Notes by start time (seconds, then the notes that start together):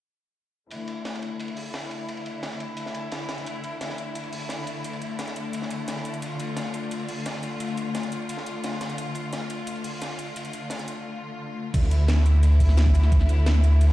0.71 D3 A3 E4, closed hi-hat, ride
0.88 closed hi-hat, ride
1.05 snare, closed hi-hat, ride
1.14 snare
1.22 closed hi-hat, ride
1.40 closed hi-hat, ride
1.48 ride
1.57 closed hi-hat, open hi-hat
1.74 snare, closed hi-hat, ride
1.83 snare
1.91 closed hi-hat, ride
2.09 closed hi-hat, ride
2.17 ride
2.26 closed hi-hat, ride
2.43 snare, closed hi-hat, ride
2.52 snare, closed hi-hat
2.60 closed hi-hat, ride
2.77 closed hi-hat, ride
2.86 snare
2.94 closed hi-hat, ride
3.12 snare, closed hi-hat, ride
3.21 snare
3.29 snare, closed hi-hat, ride
3.38 snare, closed hi-hat
3.46 closed hi-hat, ride
3.64 closed hi-hat, ride
3.81 snare, closed hi-hat, ride
3.90 snare
3.98 closed hi-hat, ride
4.15 closed hi-hat, ride
4.24 ride
4.33 closed hi-hat, open hi-hat
4.49 snare, closed hi-hat, ride
4.58 snare
4.67 closed hi-hat, ride
4.84 closed hi-hat, ride
4.93 ride
5.01 closed hi-hat, ride
5.19 snare, closed hi-hat, ride
5.27 snare, closed hi-hat
5.36 closed hi-hat, ride
5.53 closed hi-hat, ride
5.62 snare
5.71 closed hi-hat, ride
5.88 snare, closed hi-hat, ride
5.96 snare
6.05 closed hi-hat, ride
6.13 closed hi-hat, ride
6.22 F4, closed hi-hat, ride
6.40 closed hi-hat, ride
6.56 snare, closed hi-hat, ride
6.65 snare
6.74 closed hi-hat, ride
6.91 closed hi-hat, ride
6.99 ride
7.09 closed hi-hat, open hi-hat
7.26 snare, closed hi-hat, ride
7.34 snare
7.43 closed hi-hat, ride
7.60 closed hi-hat, ride
7.68 ride
7.77 closed hi-hat, ride
7.95 snare, closed hi-hat, ride
8.03 snare, closed hi-hat
8.12 closed hi-hat, ride
8.29 closed hi-hat, ride
8.37 snare
8.46 closed hi-hat, ride
8.64 snare, closed hi-hat, ride
8.71 snare
8.81 snare, closed hi-hat, ride
8.89 snare, closed hi-hat
8.98 closed hi-hat, ride
9.15 closed hi-hat, ride
9.33 snare, closed hi-hat, ride
9.41 snare
9.50 closed hi-hat, ride
9.67 closed hi-hat, ride
9.76 ride
9.84 closed hi-hat, open hi-hat
10.02 snare, closed hi-hat, ride
10.10 snare
10.19 closed hi-hat, ride
10.36 closed hi-hat, ride
10.45 closed hi-hat, ride
10.53 closed hi-hat, ride
10.70 snare, closed hi-hat, ride
10.79 snare, closed hi-hat
10.88 closed hi-hat, ride
11.74 D2 D3 A3 E4, kick, closed hi-hat, crash, ride
11.83 snare
11.91 closed hi-hat, ride
12.08 snare, closed hi-hat, ride
12.17 snare
12.26 closed hi-hat, ride
12.43 closed hi-hat, ride
12.52 ride
12.60 kick, closed hi-hat, open hi-hat
12.69 snare
12.77 snare, closed hi-hat, ride
12.86 kick, snare
12.95 closed hi-hat, ride
13.03 snare
13.12 D2, kick, closed hi-hat, ride
13.20 snare, ride
13.29 closed hi-hat, ride
13.46 snare, closed hi-hat, ride
13.55 snare
13.64 closed hi-hat, ride
13.81 closed hi-hat, ride
13.89 snare